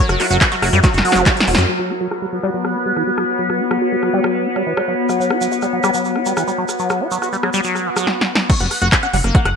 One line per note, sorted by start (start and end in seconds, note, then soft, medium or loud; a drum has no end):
0.00 1.70 F#3 medium
0.00 1.68 F#4 medium
0.00 1.71 A#4 medium
0.00 1.69 C#5 medium
0.00 2.69 E5 medium
0.09 0.17 F#1 medium
0.09 0.21 F#3 medium
0.09 0.15 F#4 medium
0.09 cross-stick medium
0.09 closed hi-hat soft
0.09 shaker soft
0.20 0.25 F#4 medium
0.20 0.27 F#4 medium
0.20 clap soft
0.20 open hi-hat loud
0.30 0.38 F#1 medium
0.30 0.37 F#3 medium
0.30 0.36 F#4 medium
0.30 closed hi-hat soft
0.30 shaker medium
0.41 0.48 F#4 medium
0.41 0.47 B4 loud
0.41 kick loud
0.41 cross-stick soft
0.41 clap loud
0.41 closed hi-hat medium
0.41 ride medium
0.41 shaker medium
0.52 0.56 G3 medium
0.52 0.57 F#4 medium
0.52 closed hi-hat soft
0.52 shaker soft
0.62 0.70 F#1 loud
0.62 0.69 F#3 medium
0.62 0.68 F#4 medium
0.62 cross-stick medium
0.62 open hi-hat loud
0.73 0.80 F#2 medium
0.73 0.80 G3 loud
0.73 closed hi-hat soft
0.73 shaker medium
0.83 0.94 F#3 medium
0.83 0.89 F#4 medium
0.83 kick loud
0.83 snare medium
0.83 closed hi-hat medium
0.83 ride medium
0.83 shaker medium
0.94 1.02 F#1 medium
0.94 1.00 F#4 medium
0.94 closed hi-hat soft
0.94 shaker soft
0.98 snare medium
1.05 1.15 F#3 loud
1.05 1.60 F#4 loud
1.05 open hi-hat loud
1.12 1.23 F#1 medium
1.12 1.26 F#3 loud
1.12 snare medium
1.12 closed hi-hat soft
1.12 shaker medium
1.26 1.38 G3 medium
1.26 kick loud
1.26 snare medium
1.26 clap loud
1.26 closed hi-hat medium
1.26 ride medium
1.26 shaker medium
1.37 1.44 E3 medium
1.37 snare loud
1.37 closed hi-hat soft
1.37 shaker soft
1.47 1.55 E1 loud
1.47 1.54 F#4 loud
1.47 open hi-hat loud
1.55 1.66 F#2 medium
1.55 1.62 F#3 medium
1.55 snare loud
1.55 closed hi-hat soft
1.55 shaker medium
1.69 1.79 F#3 medium
1.69 8.07 B3 medium
1.69 8.07 F#4 medium
1.69 8.07 B4 medium
1.69 crash medium
1.79 1.92 F#3 medium
1.90 1.97 F#4 medium
1.90 cross-stick soft
2.01 2.08 F#3 medium
2.11 2.18 F#4 medium
2.11 8.07 C#5 medium
2.11 cross-stick medium
2.22 2.26 G3 medium
2.33 2.40 F#3 medium
2.43 2.50 G3 loud
2.43 cross-stick soft
2.54 2.77 F#3 medium
2.65 cross-stick medium
2.75 2.82 F#4 medium
2.86 2.93 G3 medium
2.96 3.03 E3 medium
2.96 8.07 F#5 medium
2.96 cross-stick soft
3.07 3.11 G3 medium
3.18 3.25 F#3 medium
3.18 cross-stick medium
3.39 3.49 F#3 medium
3.50 3.62 F#3 medium
3.50 cross-stick soft
3.60 3.67 F#4 medium
3.71 3.78 F#3 medium
3.71 cross-stick medium
3.82 3.88 F#4 medium
3.92 3.96 G3 medium
4.03 4.10 F#3 medium
4.03 cross-stick soft
4.13 4.20 G3 loud
4.24 4.47 F#3 medium
4.24 cross-stick medium
4.45 4.52 F#4 medium
4.56 4.63 G3 medium
4.56 cross-stick soft
4.67 4.74 E3 medium
4.77 4.81 G3 medium
4.77 cross-stick medium
4.88 4.95 F#3 medium
5.09 5.19 F#3 medium
5.09 cross-stick soft
5.09 shaker medium
5.20 5.32 F#3 medium
5.20 shaker soft
5.30 5.37 F#4 medium
5.30 cross-stick medium
5.41 5.48 F#3 medium
5.41 shaker medium
5.52 5.59 F#4 medium
5.52 shaker medium
5.62 5.67 G3 medium
5.62 cross-stick soft
5.62 shaker soft
5.73 5.80 F#3 medium
5.83 5.91 G3 loud
5.83 cross-stick medium
5.83 shaker medium
5.94 6.17 F#3 medium
5.94 shaker medium
6.05 shaker soft
6.16 6.23 F#4 medium
6.16 cross-stick soft
6.26 6.33 G3 medium
6.26 shaker medium
6.37 6.44 E3 medium
6.37 cross-stick medium
6.37 shaker medium
6.48 6.52 G3 medium
6.48 shaker soft
6.58 6.65 F#3 medium
6.69 cross-stick soft
6.69 shaker medium
6.79 6.90 F#3 medium
6.79 shaker medium
6.90 7.02 F#3 medium
6.90 cross-stick medium
6.90 shaker soft
7.01 7.08 F#4 medium
7.11 7.18 F#3 medium
7.11 shaker medium
7.22 7.29 F#4 medium
7.22 cross-stick soft
7.22 shaker medium
7.33 7.37 G3 medium
7.33 shaker soft
7.43 7.50 F#3 medium
7.43 cross-stick medium
7.54 7.61 G3 loud
7.54 shaker medium
7.64 7.87 F#3 medium
7.64 swell medium
7.64 shaker medium
7.75 cross-stick soft
7.75 shaker soft
7.86 7.90 E3 medium
7.96 8.07 F#3 medium
7.96 cross-stick medium
7.96 shaker medium
8.07 snare medium
8.21 snare medium
8.35 snare medium
8.50 8.54 F#3 medium
8.50 8.55 C#6 loud
8.50 kick loud
8.50 closed hi-hat medium
8.50 crash loud
8.60 8.68 F#1 medium
8.60 8.67 G3 medium
8.60 8.66 F#5 medium
8.60 closed hi-hat soft
8.71 8.76 F#5 medium
8.71 cross-stick soft
8.71 open hi-hat loud
8.82 8.89 F#1 medium
8.82 8.88 F#4 medium
8.82 8.87 F#5 medium
8.82 closed hi-hat soft
8.92 8.96 F#3 medium
8.92 8.98 B5 medium
8.92 kick loud
8.92 cross-stick medium
8.92 clap loud
8.92 closed hi-hat medium
9.03 9.07 C#4 medium
9.03 9.08 F#5 medium
9.03 closed hi-hat soft
9.13 9.21 F#1 loud
9.13 9.18 G3 loud
9.13 9.19 F#5 medium
9.13 open hi-hat loud
9.24 9.32 F#1 medium
9.24 9.47 A#3 medium
9.24 cross-stick soft
9.24 closed hi-hat soft
9.35 9.40 F#5 medium
9.35 kick loud
9.35 closed hi-hat medium
9.45 9.53 F#1 medium
9.45 9.50 G3 medium
9.45 9.51 F#5 medium
9.45 cross-stick medium
9.45 closed hi-hat soft